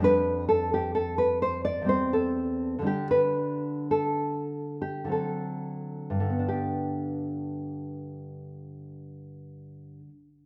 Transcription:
0.00 1.81 F2 medium
0.00 1.83 G3 medium
0.00 1.84 D4 medium
0.04 0.48 B4 loud
0.49 0.72 A4 loud
0.74 0.94 G4 loud
0.95 1.18 A4 loud
1.18 1.42 B4 loud
1.42 1.64 C5 loud
1.65 1.88 D5 loud
1.81 2.80 E2 medium
1.81 2.81 G3 medium
1.86 2.78 C4 medium
1.86 2.13 C5 loud
2.13 2.84 A4 loud
2.79 5.03 D3 medium
2.79 5.06 G3 medium
2.84 5.07 D4 medium
2.84 3.10 G4 loud
3.11 3.89 B4 loud
3.91 4.76 A4 medium
4.82 5.11 G4 medium
5.05 6.19 D3 medium
5.05 6.42 F#3 medium
5.09 6.39 C4 medium
5.09 6.44 A4 medium
6.10 9.99 G2 medium
6.20 10.09 D3 medium
6.29 10.18 B3 medium
6.39 10.28 D4 medium
6.48 10.37 G4 medium

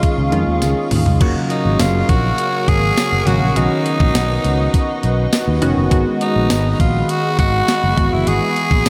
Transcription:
0.00 0.32 D#3 medium
0.00 0.32 G#3 medium
0.00 0.33 C#4 medium
0.00 0.33 F4 medium
0.00 0.62 F4 loud
0.00 1.19 G#4 medium
0.00 1.17 D#5 medium
0.00 1.17 F5 medium
0.00 1.19 C#6 medium
0.00 kick medium
0.00 closed hi-hat medium
0.18 0.29 C#2 medium
0.32 0.44 F2 medium
0.32 0.94 D#3 medium
0.32 0.94 G#3 medium
0.32 0.94 C#4 medium
0.32 0.94 F4 medium
0.32 closed hi-hat medium
0.47 0.58 D#2 loud
0.62 0.73 C#2 medium
0.62 snare medium
0.62 closed hi-hat medium
0.62 tambourine medium
0.91 1.03 D#2 medium
0.91 mid tom medium
0.91 open hi-hat medium
1.06 1.17 C#2 medium
1.06 floor tom medium
1.20 1.32 F#1 loud
1.20 2.03 C#3 medium
1.20 2.03 F#3 medium
1.20 2.03 A#3 medium
1.20 2.03 F#4 medium
1.20 3.54 A#4 medium
1.20 3.54 C#5 medium
1.20 5.88 F#5 medium
1.20 5.88 C#6 medium
1.20 kick loud
1.20 closed hi-hat medium
1.20 crash loud
1.50 1.82 D#4 medium
1.50 closed hi-hat medium
1.65 1.76 G#1 medium
1.79 2.02 F#1 medium
1.79 2.11 F4 loud
1.79 snare loud
1.79 closed hi-hat loud
1.79 tambourine medium
2.09 2.31 A#1 medium
2.09 2.70 F#4 loud
2.09 kick medium
2.09 closed hi-hat medium
2.38 closed hi-hat medium
2.68 2.90 G#1 medium
2.68 3.28 G#4 loud
2.68 kick loud
2.68 closed hi-hat medium
2.97 snare loud
2.97 closed hi-hat medium
2.97 tambourine medium
3.12 3.23 F#1 medium
3.26 3.38 G#1 medium
3.26 3.47 C#3 medium
3.26 3.47 F#3 medium
3.26 3.47 A#3 medium
3.26 3.58 F#4 loud
3.26 3.48 F#4 medium
3.26 closed hi-hat medium
3.42 3.53 A#1 medium
3.56 3.67 B1 loud
3.56 4.38 D#3 medium
3.56 4.38 B3 medium
3.56 4.38 C#4 medium
3.56 5.33 D#4 loud
3.56 4.38 F#4 medium
3.56 5.89 B4 medium
3.56 7.93 D#5 medium
3.56 closed hi-hat loud
3.86 closed hi-hat medium
4.00 4.11 A#1 medium
4.00 kick loud
4.15 4.37 B1 loud
4.15 snare loud
4.15 closed hi-hat loud
4.15 tambourine medium
4.44 4.67 C#2 medium
4.44 closed hi-hat medium
4.74 kick medium
4.74 closed hi-hat medium
5.03 5.26 B1 medium
5.03 closed hi-hat medium
5.33 snare loud
5.33 closed hi-hat medium
5.33 tambourine medium
5.48 5.59 D#2 medium
5.61 5.73 F1 medium
5.61 5.82 D#3 medium
5.61 5.82 B3 medium
5.61 5.83 C#4 medium
5.61 5.83 F#4 medium
5.61 closed hi-hat medium
5.77 5.88 F#1 medium
5.91 6.03 G#1 loud
5.91 6.73 D#3 medium
5.91 6.73 G#3 medium
5.91 6.73 B3 medium
5.91 6.74 F#4 loud
5.91 8.89 G#4 medium
5.91 8.89 F#5 medium
5.91 8.89 B5 medium
5.91 kick loud
5.91 closed hi-hat medium
6.21 6.76 D#4 medium
6.21 closed hi-hat medium
6.36 6.47 A#1 medium
6.50 6.73 G#1 medium
6.50 snare loud
6.50 closed hi-hat loud
6.50 tambourine medium
6.80 7.02 A#1 medium
6.80 7.12 F4 medium
6.80 kick medium
6.80 closed hi-hat medium
7.09 7.39 F#4 loud
7.09 closed hi-hat medium
7.39 7.61 G#1 medium
7.39 8.15 F#4 loud
7.39 kick medium
7.39 closed hi-hat medium
7.68 snare loud
7.68 closed hi-hat loud
7.68 tambourine medium
7.83 7.94 F#1 medium
7.97 8.08 G#1 medium
7.97 8.89 E3 medium
7.97 8.89 G#3 medium
7.97 8.89 B3 medium
7.97 8.89 F#4 medium
7.97 8.89 E5 medium
7.97 kick loud
7.97 closed hi-hat medium
8.13 8.24 F#1 medium
8.13 8.29 E4 medium
8.27 8.38 G#1 loud
8.27 8.89 G#4 loud
8.27 closed hi-hat medium
8.56 closed hi-hat medium
8.71 8.82 A#1 medium
8.71 kick loud
8.86 snare loud
8.86 closed hi-hat loud
8.86 tambourine medium

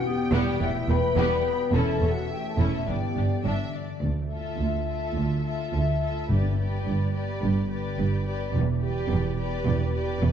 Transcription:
0.00 0.59 E2 medium
0.00 0.78 B2 medium
0.00 0.97 B3 medium
0.00 1.76 B4 soft
0.00 0.74 F5 soft
0.00 1.69 G5 medium
0.00 0.60 G5 medium
0.04 0.35 B3 medium
0.04 0.40 G4 medium
0.04 0.62 G4 medium
0.22 1.35 D5 medium
0.32 0.40 E1 medium
0.32 0.40 E2 medium
0.32 0.62 G3 medium
0.32 0.59 B3 medium
0.32 0.59 G4 medium
0.41 1.16 G4 medium
0.60 0.69 E1 medium
0.60 0.68 E2 medium
0.60 1.72 E2 medium
0.60 1.17 A3 medium
0.60 0.69 B3 medium
0.60 0.89 E4 medium
0.60 0.69 D5 medium
0.60 0.89 E5 medium
0.80 1.76 B2 medium
0.89 0.97 E1 medium
0.89 0.97 E2 medium
0.89 0.98 B3 medium
0.89 0.97 B4 medium
0.89 1.74 B4 loud
0.89 1.74 B5 medium
0.98 1.76 B3 medium
1.16 1.25 E1 medium
1.16 1.24 E2 medium
1.16 1.47 G3 medium
1.16 1.44 B3 medium
1.16 1.43 G4 medium
1.36 1.76 D5 medium
1.45 1.75 B3 medium
1.55 1.76 G4 soft
1.72 1.81 E1 medium
1.72 1.80 E2 medium
1.72 2.90 E2 medium
1.72 2.10 C#4 medium
1.72 2.01 C#4 medium
1.72 2.00 E4 medium
1.72 2.12 A4 loud
1.72 2.86 E5 medium
1.72 2.12 A5 medium
1.92 2.90 E3 soft
2.01 2.09 E1 soft
2.01 2.09 E2 soft
2.01 2.11 C#4 soft
2.01 2.10 C#5 soft
2.11 2.90 C#4 soft
2.11 2.31 F#4 medium
2.11 2.30 F#5 medium
2.31 2.91 A3 medium
2.31 2.67 E4 soft
2.31 2.50 G4 medium
2.31 2.49 G5 medium
2.50 2.67 A4 medium
2.50 2.90 C#5 soft
2.50 2.68 A5 medium
2.58 2.67 E1 medium
2.58 2.66 E2 medium
2.58 2.86 C#4 soft
2.58 2.85 E4 soft
2.68 2.90 E4 soft
2.68 2.77 A4 medium
2.68 2.88 A5 soft
2.86 2.96 G1 soft
2.86 2.94 G2 soft
2.86 4.05 G2 soft
2.86 3.75 B3 soft
2.86 2.96 D4 soft
2.86 3.44 G4 medium
2.86 2.94 B4 soft
2.86 3.40 D5 soft
2.86 3.45 G5 soft
3.07 4.02 D3 soft
3.15 3.25 G1 soft
3.15 3.23 G2 soft
3.15 3.25 D4 soft
3.15 3.24 G4 soft
3.26 4.05 B3 soft
3.44 3.54 G1 soft
3.44 3.52 G2 medium
3.44 3.72 D4 soft
3.44 3.82 D4 soft
3.44 3.73 D4 soft
3.44 3.72 E5 medium
3.64 6.85 D5 soft
3.74 4.03 D5 soft
3.84 5.16 D4 soft
4.03 4.51 D2 soft
4.03 6.32 D3 soft
4.03 4.84 D3 soft
4.21 4.97 A3 soft
4.31 4.88 F4 soft
4.31 4.86 A4 soft
4.31 4.87 E5 soft
4.40 4.78 F4 soft
4.59 5.07 D2 soft
4.59 5.73 E5 soft
4.79 5.53 F4 soft
4.87 5.43 F4 soft
4.87 5.43 A4 soft
4.87 5.44 E5 soft
4.98 5.35 A3 soft
5.16 5.64 D2 soft
5.16 9.07 D4 soft
5.36 6.10 A3 soft
5.45 6.00 F4 soft
5.45 6.00 A4 soft
5.45 6.01 E5 soft
5.55 5.91 F4 soft
5.72 6.20 D2 medium
5.72 6.21 D2 soft
5.72 6.32 E5 soft
5.93 6.32 F4 soft
6.01 6.29 F4 soft
6.01 6.29 A4 soft
6.01 6.30 E5 soft
6.11 6.32 A3 soft
6.29 6.77 G1 soft
6.29 6.76 G2 medium
6.29 7.10 G2 soft
6.29 8.57 G2 soft
6.29 6.58 G4 soft
6.29 6.56 B4 soft
6.29 6.59 D5 soft
6.49 7.23 B3 soft
6.58 7.14 G4 soft
6.58 7.13 B4 soft
6.58 7.13 D5 soft
6.67 7.03 G4 soft
6.86 7.33 G1 soft
6.86 7.33 G2 medium
6.86 7.97 D5 soft
7.05 7.79 G4 soft
7.14 7.69 G4 soft
7.14 7.69 B4 soft
7.14 7.69 D5 soft
7.24 7.60 B3 soft
7.42 7.90 G1 medium
7.42 7.90 G2 medium
7.42 8.57 D3 soft
7.61 8.35 B3 soft
7.70 8.26 G4 soft
7.70 8.26 B4 soft
7.70 8.26 D5 soft
7.80 8.16 G4 soft
7.98 8.46 G1 medium
7.98 8.45 G2 medium
7.98 9.09 D5 soft
8.17 8.91 G4 soft
8.27 8.54 G4 soft
8.27 8.55 B4 soft
8.27 8.54 D5 soft
8.36 8.71 B3 soft
8.54 9.01 E1 medium
8.54 9.01 E2 medium
8.54 10.32 E2 medium
8.73 9.47 B3 soft
8.83 9.38 G4 medium
8.83 9.37 B4 soft
8.83 9.36 D5 soft
8.92 9.28 G4 soft
9.10 9.57 E1 medium
9.10 9.57 E2 medium
9.10 10.22 D5 soft
9.29 10.03 G4 soft
9.37 9.94 G4 soft
9.37 9.93 B4 medium
9.37 9.93 D5 medium
9.48 9.84 B3 soft
9.66 10.13 E1 medium
9.66 10.13 E2 medium
9.66 10.32 B2 soft
9.85 10.32 B3 soft
9.94 10.32 G4 soft
9.94 10.32 B4 soft
9.94 10.32 D5 medium
10.04 10.32 G4 soft
10.22 10.32 E1 medium
10.22 10.32 E2 medium
10.22 10.32 D5 soft

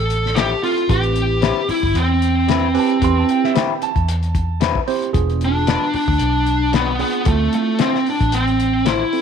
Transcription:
0.00 0.53 A1 medium
0.00 0.38 A4 loud
0.10 closed hi-hat medium
0.26 snare soft
0.35 0.53 F3 medium
0.35 0.53 C4 medium
0.35 0.53 E4 medium
0.35 0.63 G4 loud
0.35 0.54 A4 medium
0.35 snare loud
0.35 closed hi-hat medium
0.63 0.85 C4 medium
0.63 0.86 E4 medium
0.63 0.88 F4 medium
0.63 0.86 F4 medium
0.63 0.86 A4 medium
0.63 open hi-hat medium
0.78 closed hi-hat soft
0.89 1.51 A1 medium
0.89 1.78 C4 medium
0.89 1.78 E4 medium
0.89 1.70 G4 loud
0.89 1.78 G4 medium
0.89 1.78 B4 medium
0.89 kick loud
0.89 closed hi-hat medium
1.03 closed hi-hat soft
1.16 closed hi-hat medium
1.42 1.59 G3 medium
1.42 1.59 C4 medium
1.42 1.60 E4 medium
1.42 1.60 B4 medium
1.42 snare loud
1.42 closed hi-hat medium
1.69 1.97 E4 medium
1.69 muted fingered electric bass stroke soft
1.69 open hi-hat medium
1.83 1.93 G1 medium
1.83 kick medium
1.94 2.76 E2 medium
1.94 3.51 C4 medium
1.94 closed hi-hat medium
2.22 closed hi-hat medium
2.48 2.65 G3 medium
2.48 2.66 C4 medium
2.48 2.66 E4 medium
2.48 2.66 B4 medium
2.48 snare loud
2.48 closed hi-hat medium
2.74 2.97 C4 medium
2.74 2.97 E4 medium
2.74 2.97 G4 medium
2.74 2.97 B4 medium
2.74 2.77 G#5 medium
2.74 open hi-hat medium
2.78 3.03 A5 medium
2.90 closed hi-hat soft
3.01 3.22 E2 loud
3.01 3.90 C4 medium
3.01 3.90 E4 medium
3.01 3.90 G4 medium
3.01 3.90 B4 medium
3.01 3.16 C6 medium
3.01 kick loud
3.01 closed hi-hat medium
3.19 3.29 A5 medium
3.29 3.43 G5 medium
3.29 closed hi-hat medium
3.44 3.55 E5 medium
3.44 snare soft
3.54 3.71 G3 medium
3.54 3.71 C4 medium
3.54 3.72 E4 medium
3.54 3.72 B4 medium
3.54 3.82 G5 medium
3.54 snare loud
3.54 closed hi-hat medium
3.82 4.85 A5 loud
3.82 closed hi-hat medium
3.96 4.78 E2 medium
3.96 kick medium
3.96 closed hi-hat soft
4.08 closed hi-hat medium
4.23 closed hi-hat soft
4.35 kick medium
4.35 closed hi-hat medium
4.61 4.78 G3 medium
4.61 4.78 C4 medium
4.61 4.78 E4 medium
4.61 4.79 B4 medium
4.61 snare medium
4.61 closed hi-hat medium
4.75 kick medium
4.88 5.10 C4 medium
4.88 5.10 E4 medium
4.88 5.10 G4 medium
4.88 5.10 C5 medium
4.88 open hi-hat medium
5.02 closed hi-hat soft
5.13 5.75 E1 medium
5.13 6.02 B3 medium
5.13 6.02 D4 medium
5.13 6.02 F4 medium
5.13 6.02 G#4 medium
5.13 kick loud
5.13 closed hi-hat medium
5.29 closed hi-hat soft
5.41 5.94 D4 medium
5.41 closed hi-hat medium
5.67 5.84 G#3 medium
5.67 5.84 D4 medium
5.67 5.85 F4 medium
5.67 5.85 B4 medium
5.67 snare loud
5.67 closed hi-hat medium
5.94 6.70 D4 medium
5.94 muted fingered electric bass stroke soft
5.94 open hi-hat medium
6.08 6.17 D2 medium
6.08 kick medium
6.19 7.02 B1 medium
6.19 closed hi-hat medium
6.46 closed hi-hat medium
6.73 6.90 G#3 medium
6.73 7.00 B3 medium
6.73 6.90 D4 medium
6.73 6.90 F4 medium
6.73 6.91 B4 medium
6.73 snare medium
6.73 closed hi-hat medium
6.99 7.22 B3 medium
6.99 7.27 B3 medium
6.99 7.22 D4 medium
6.99 7.22 F4 medium
6.99 7.22 G#4 medium
6.99 open hi-hat medium
7.13 closed hi-hat soft
7.25 7.47 D2 loud
7.25 7.54 A3 medium
7.25 8.14 C4 medium
7.25 8.14 E4 medium
7.25 8.14 F4 medium
7.25 8.14 A4 medium
7.25 kick loud
7.25 closed hi-hat medium
7.53 7.81 A3 medium
7.53 closed hi-hat medium
7.79 7.96 A3 medium
7.79 8.06 C4 medium
7.79 7.96 E4 medium
7.79 7.97 F4 medium
7.79 7.97 C5 medium
7.79 snare loud
7.79 closed hi-hat medium
7.95 snare soft
8.06 8.33 D4 medium
8.06 open hi-hat medium
8.21 9.02 A1 medium
8.21 kick medium
8.21 closed hi-hat soft
8.32 8.88 C4 medium
8.32 closed hi-hat medium
8.47 closed hi-hat soft
8.60 closed hi-hat medium
8.85 9.02 A3 medium
8.85 9.03 E4 medium
8.85 9.22 E4 medium
8.85 9.03 F4 medium
8.85 9.03 C5 medium
8.85 snare loud
8.85 closed hi-hat medium
9.13 9.22 C4 medium
9.13 9.22 E4 medium
9.13 9.22 F4 medium
9.13 9.22 A4 medium
9.13 open hi-hat medium

